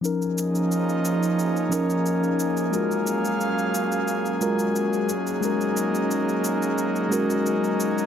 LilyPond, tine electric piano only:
\new Staff \with { instrumentName = "Tine electric piano" } { \time 4/4 \key des \mixolydian \tempo 4 = 89 <f des' ees' bes'>2~ <f des' ees' bes'>8 <f des' ees' bes'>4. | <aes f' ges' bes'>2~ <aes f' ges' bes'>8 <aes f' ges' bes'>4 r8 | <aes des' ges' bes'>2~ <aes des' ges' bes'>8 <aes des' ges' bes'>4. | }